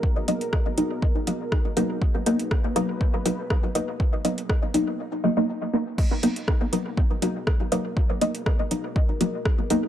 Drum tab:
CC |----------------|----------------|----------------|x---------------|
HH |--xx--x---x---x-|--xx--x---x---x-|--xx--x---------|--xx--x---x---x-|
SD |----r-------r---|----r-------r---|----r-----------|----r-------r---|
BD |o---o---o---o---|o---o---o---o---|o---o-----------|o---o---o---o---|

CC |----------------|
HH |--xx--x---x---x-|
SD |----r-------r---|
BD |o---o---o---o---|